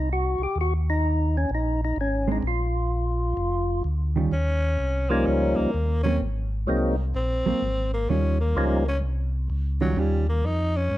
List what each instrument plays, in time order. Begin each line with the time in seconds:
Already playing: tonewheel organ C2
0.13 tonewheel organ F#4
0.38 tonewheel organ C2
0.43 tonewheel organ G4
0.56 tonewheel organ D#2
0.61 tonewheel organ F#4
0.90 tonewheel organ D#4
1.37 tonewheel organ C#4
1.50 tonewheel organ A#1
1.55 tonewheel organ D#4
1.85 tonewheel organ D#4
1.96 tonewheel organ G#1
2.01 tonewheel organ C#4
2.28 hollow-body jazz guitar G#3 C4 D4
2.32 tonewheel organ D#4
2.43 tonewheel organ A#1
2.47 tonewheel organ F4
3.37 tonewheel organ F1
3.84 tonewheel organ D2
4.16 hollow-body jazz guitar D#3 G3 C#4 F4
4.32 tonewheel organ D#2, tenor saxophone C#4
4.79 tonewheel organ C2
5.10 tonewheel organ F3 G3 A#3 C#4 D#4, tenor saxophone A#3
5.26 tonewheel organ C#2, tenor saxophone C#4
5.56 tonewheel organ C#2, tenor saxophone A#3
5.74 tonewheel organ D#2
6.03 hollow-body jazz guitar F#3 A#3 C4, tenor saxophone C#4
6.21 tonewheel organ G#1
6.67 tonewheel organ C2 F#3 G#3 A#3 C4 D#4
7.14 tonewheel organ A#1, tenor saxophone C4
7.45 tonewheel organ A#1, hollow-body jazz guitar F#3 A#3 C4
7.62 tonewheel organ G#1
7.94 tenor saxophone A#3
8.09 tonewheel organ D#2, hollow-body jazz guitar D#3 G3 C#4 F4, tenor saxophone C#4
8.40 tenor saxophone A#3
8.55 tonewheel organ C#2 F3 G3 A#3 C#4 D#4
8.88 tenor saxophone C#4
9.02 tonewheel organ C2
9.50 tonewheel organ C#2
9.81 hollow-body jazz guitar D#3 G3 C#4 F4, tenor saxophone F#3
9.96 tonewheel organ D#2, hollow-body jazz guitar D#3 G3 C#4 F4, tenor saxophone G3
10.29 tenor saxophone A#3
10.43 tonewheel organ F2, tenor saxophone D#4
10.77 tenor saxophone C#4
10.91 tonewheel organ G2